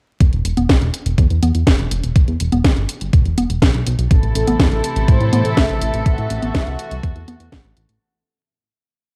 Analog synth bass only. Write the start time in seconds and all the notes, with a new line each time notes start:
0.20 E1
0.33 E1
0.45 E1
0.57 E1
0.69 B1
0.81 E1
1.06 E1
1.18 E2
1.30 E2
1.43 E2
1.55 E2
1.67 E1
1.79 E1
1.91 E1
2.04 E1
2.16 E1
2.28 E2
2.40 E1
2.52 E1
2.64 G1
2.77 G1
3.01 G1
3.13 E1
3.25 E1
3.38 E1
3.50 E1
3.62 B1
3.74 B1
3.87 B1
3.99 B1
4.11 A1
4.23 A1
4.35 A1
4.47 A1
4.60 E2
4.72 A1
4.96 A1
5.08 A2
5.21 A2
5.33 A2
5.45 A2
5.57 A1
5.69 A1
5.82 A1
5.94 A1
6.06 A1
6.18 A2
6.30 A1
6.43 A1
6.55 C2
6.67 C2
6.91 C2
7.03 E2
7.16 E2
7.28 E2
7.40 E2
7.52 A1
7.64 A1
7.77 A1
7.89 A1